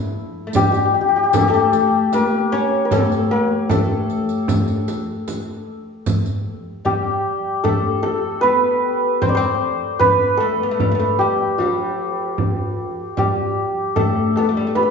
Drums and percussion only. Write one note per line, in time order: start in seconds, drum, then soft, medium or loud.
0.53 riq medium
0.53 frame drum medium
0.74 riq soft
1.33 riq medium
1.33 frame drum medium
1.53 riq soft
1.72 riq soft
1.72 frame drum medium
2.13 riq soft
2.13 frame drum medium
2.91 riq medium
2.91 frame drum medium
3.12 riq soft
3.70 riq medium
3.70 frame drum medium
4.10 riq soft
4.29 riq soft
4.48 riq medium
4.48 frame drum medium
4.68 riq soft
4.88 riq soft
4.88 frame drum medium
5.28 riq soft
5.28 frame drum medium
6.06 riq medium
6.06 frame drum medium
6.26 riq soft
6.85 frame drum medium
7.64 frame drum medium
8.03 frame drum medium
8.43 frame drum medium
9.22 frame drum medium
10.00 frame drum medium
10.80 frame drum medium
11.19 frame drum medium
11.59 frame drum medium
12.38 frame drum medium
13.17 frame drum medium
13.96 frame drum medium
14.36 frame drum medium
14.75 frame drum medium